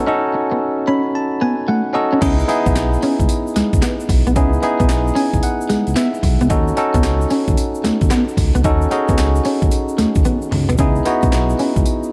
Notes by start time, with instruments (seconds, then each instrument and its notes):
Already playing: tine electric piano C#4 D#4 F#4 A4
0.07 tine electric piano C#4 D#4 F#4 A4, clean electric guitar D#4
0.34 muted clean electric guitar stroke
0.52 clean electric guitar B3
0.87 clean electric guitar C#4, tine electric piano B5
1.15 tine electric piano A5
1.41 clean electric guitar B3, tine electric piano G#5
1.68 clean electric guitar A3, tine electric piano F#5
1.93 tine electric piano C#4 D#4 F#4 A4 D#5, muted clean electric guitar stroke
2.13 clean electric guitar C#4
2.21 analog synth bass C#2, tine electric piano B3 D#4 E4 G#4, clean electric guitar C#4, kick, closed hi-hat, crash, shaker
2.39 shaker
2.48 tine electric piano B3 D#4 E4 G#4, muted clean electric guitar stroke, closed hi-hat, tambourine
2.66 analog synth bass B1, clean electric guitar B3, kick, closed hi-hat, shaker
2.76 analog synth bass B1, snare, clap, closed hi-hat, tambourine, shaker
2.93 shaker
3.02 clean electric guitar C#4, open hi-hat, tambourine
3.20 analog synth bass C#2, kick, closed hi-hat, shaker
3.29 closed hi-hat, tambourine, shaker
3.47 shaker
3.56 analog synth bass C#2, clean electric guitar G#3, snare, closed hi-hat, tambourine
3.73 analog synth bass C#2, kick, closed hi-hat, shaker
3.82 clean electric guitar B3, snare, clap, closed hi-hat, tambourine, shaker
4.00 shaker
4.09 analog synth bass B1, muted clean electric guitar stroke, kick, open hi-hat, tambourine
4.27 analog synth bass B1, clean electric guitar B3, closed hi-hat, shaker
4.36 analog synth bass C#2, tine electric piano B3 D#4 E4 G#4, clean electric guitar C#4, kick, closed hi-hat, shaker
4.53 shaker
4.62 tine electric piano B3 D#4 E4 G#4, muted clean electric guitar stroke, closed hi-hat, tambourine
4.80 analog synth bass B1, clean electric guitar B3, kick, closed hi-hat, shaker
4.89 analog synth bass B1, snare, clap, closed hi-hat, tambourine, shaker
5.07 shaker
5.15 clean electric guitar C#4, tine electric piano G#5, open hi-hat, tambourine
5.33 analog synth bass C#2, kick, closed hi-hat, shaker
5.43 tine electric piano F#5, closed hi-hat, tambourine, shaker
5.61 shaker
5.69 analog synth bass C#2, clean electric guitar G#3, snare, closed hi-hat, tambourine
5.87 analog synth bass C#2, closed hi-hat, shaker
5.96 clean electric guitar B3, tine electric piano E5, snare, clap, closed hi-hat, tambourine, shaker
6.14 shaker
6.23 analog synth bass B1, muted clean electric guitar stroke, kick, open hi-hat, tambourine
6.41 analog synth bass C#2, clean electric guitar B3, closed hi-hat, shaker
6.50 analog synth bass D#2, tine electric piano C#4 D#4 F#4 A4, clean electric guitar D#4, kick, closed hi-hat, shaker
6.68 shaker
6.77 tine electric piano C#4 D#4 F#4 A4, muted clean electric guitar stroke, closed hi-hat, tambourine
6.94 analog synth bass C#2, clean electric guitar B3, kick, closed hi-hat, shaker
7.03 analog synth bass C#2, snare, clap, closed hi-hat, tambourine, shaker
7.21 shaker
7.30 clean electric guitar C#4, open hi-hat, tambourine
7.48 analog synth bass D#2, kick, closed hi-hat, shaker
7.57 closed hi-hat, tambourine, shaker
7.75 shaker
7.84 analog synth bass D#2, clean electric guitar A3, snare, closed hi-hat, tambourine
8.01 analog synth bass D#2, kick, closed hi-hat, shaker
8.10 clean electric guitar B3, snare, clap, closed hi-hat, tambourine, shaker
8.28 shaker
8.37 analog synth bass C#2, muted clean electric guitar stroke, kick, open hi-hat, tambourine
8.55 analog synth bass C#2, clean electric guitar B3, closed hi-hat, shaker
8.64 analog synth bass D#2, tine electric piano C#4 D#4 F#4 A4, clean electric guitar D#4, kick, closed hi-hat, shaker
8.82 shaker
8.91 tine electric piano C#4 D#4 F#4 G#4, muted clean electric guitar stroke, closed hi-hat, tambourine
9.08 analog synth bass C#2, clean electric guitar B3, kick, closed hi-hat, shaker
9.18 analog synth bass C#2, snare, clap, closed hi-hat, tambourine, shaker
9.35 shaker
9.45 clean electric guitar C#4, open hi-hat, tambourine
9.62 analog synth bass D#2, kick, closed hi-hat, shaker
9.71 closed hi-hat, tambourine, shaker
9.88 shaker
9.98 analog synth bass D#2, clean electric guitar A3, snare, closed hi-hat, tambourine
10.15 analog synth bass D#2, kick, closed hi-hat, shaker
10.25 clean electric guitar B3, closed hi-hat, high tom, shaker
10.42 shaker
10.51 analog synth bass C#2, muted clean electric guitar stroke, mid tom, open hi-hat
10.69 analog synth bass B1, clean electric guitar B3, closed hi-hat, floor tom, shaker
10.78 analog synth bass C#2, tine electric piano B3 D#4 E4 G#4, clean electric guitar C#4, kick, closed hi-hat, shaker
10.96 shaker
11.05 tine electric piano B3 D#4 E4 F#4, muted clean electric guitar stroke, closed hi-hat, tambourine
11.22 analog synth bass B1, clean electric guitar B3, kick, closed hi-hat, shaker
11.32 analog synth bass B1, snare, clap, closed hi-hat, tambourine, shaker
11.50 shaker
11.59 clean electric guitar C#4, open hi-hat, tambourine
11.76 analog synth bass C#2, kick, closed hi-hat, shaker
11.86 closed hi-hat, tambourine, shaker
12.03 shaker